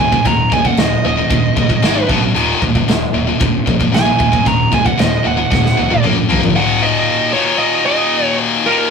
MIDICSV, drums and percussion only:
0, 0, Header, 1, 2, 480
1, 0, Start_track
1, 0, Key_signature, -6, "minor"
1, 0, Tempo, 525855
1, 231, Time_signature, 4, 2, 24, 8
1, 8126, End_track
2, 0, Start_track
2, 0, Title_t, "Drums"
2, 114, Note_on_c, 9, 36, 87
2, 205, Note_off_c, 9, 36, 0
2, 230, Note_on_c, 9, 52, 60
2, 234, Note_on_c, 9, 36, 93
2, 322, Note_off_c, 9, 52, 0
2, 326, Note_off_c, 9, 36, 0
2, 475, Note_on_c, 9, 36, 90
2, 566, Note_off_c, 9, 36, 0
2, 593, Note_on_c, 9, 36, 81
2, 684, Note_off_c, 9, 36, 0
2, 705, Note_on_c, 9, 52, 59
2, 716, Note_on_c, 9, 38, 105
2, 796, Note_off_c, 9, 52, 0
2, 807, Note_off_c, 9, 38, 0
2, 1191, Note_on_c, 9, 52, 59
2, 1192, Note_on_c, 9, 36, 107
2, 1282, Note_off_c, 9, 52, 0
2, 1283, Note_off_c, 9, 36, 0
2, 1431, Note_on_c, 9, 36, 88
2, 1523, Note_off_c, 9, 36, 0
2, 1551, Note_on_c, 9, 36, 84
2, 1642, Note_off_c, 9, 36, 0
2, 1666, Note_on_c, 9, 52, 54
2, 1677, Note_on_c, 9, 38, 102
2, 1757, Note_off_c, 9, 52, 0
2, 1768, Note_off_c, 9, 38, 0
2, 1911, Note_on_c, 9, 36, 100
2, 2003, Note_off_c, 9, 36, 0
2, 2155, Note_on_c, 9, 52, 54
2, 2246, Note_off_c, 9, 52, 0
2, 2392, Note_on_c, 9, 36, 81
2, 2483, Note_off_c, 9, 36, 0
2, 2512, Note_on_c, 9, 36, 85
2, 2604, Note_off_c, 9, 36, 0
2, 2632, Note_on_c, 9, 52, 58
2, 2643, Note_on_c, 9, 38, 117
2, 2723, Note_off_c, 9, 52, 0
2, 2734, Note_off_c, 9, 38, 0
2, 3108, Note_on_c, 9, 52, 59
2, 3111, Note_on_c, 9, 36, 109
2, 3199, Note_off_c, 9, 52, 0
2, 3203, Note_off_c, 9, 36, 0
2, 3354, Note_on_c, 9, 36, 88
2, 3445, Note_off_c, 9, 36, 0
2, 3474, Note_on_c, 9, 36, 87
2, 3565, Note_off_c, 9, 36, 0
2, 3598, Note_on_c, 9, 52, 56
2, 3609, Note_on_c, 9, 38, 104
2, 3689, Note_off_c, 9, 52, 0
2, 3700, Note_off_c, 9, 38, 0
2, 3834, Note_on_c, 9, 36, 87
2, 3925, Note_off_c, 9, 36, 0
2, 3954, Note_on_c, 9, 36, 85
2, 4046, Note_off_c, 9, 36, 0
2, 4074, Note_on_c, 9, 36, 95
2, 4075, Note_on_c, 9, 52, 56
2, 4165, Note_off_c, 9, 36, 0
2, 4166, Note_off_c, 9, 52, 0
2, 4315, Note_on_c, 9, 36, 87
2, 4406, Note_off_c, 9, 36, 0
2, 4435, Note_on_c, 9, 36, 89
2, 4526, Note_off_c, 9, 36, 0
2, 4555, Note_on_c, 9, 52, 63
2, 4565, Note_on_c, 9, 38, 104
2, 4646, Note_off_c, 9, 52, 0
2, 4657, Note_off_c, 9, 38, 0
2, 5036, Note_on_c, 9, 36, 106
2, 5046, Note_on_c, 9, 38, 57
2, 5127, Note_off_c, 9, 36, 0
2, 5137, Note_off_c, 9, 38, 0
2, 5165, Note_on_c, 9, 38, 62
2, 5256, Note_off_c, 9, 38, 0
2, 5396, Note_on_c, 9, 48, 62
2, 5488, Note_off_c, 9, 48, 0
2, 5514, Note_on_c, 9, 47, 77
2, 5605, Note_off_c, 9, 47, 0
2, 5757, Note_on_c, 9, 43, 91
2, 5848, Note_off_c, 9, 43, 0
2, 5875, Note_on_c, 9, 43, 88
2, 5966, Note_off_c, 9, 43, 0
2, 8126, End_track
0, 0, End_of_file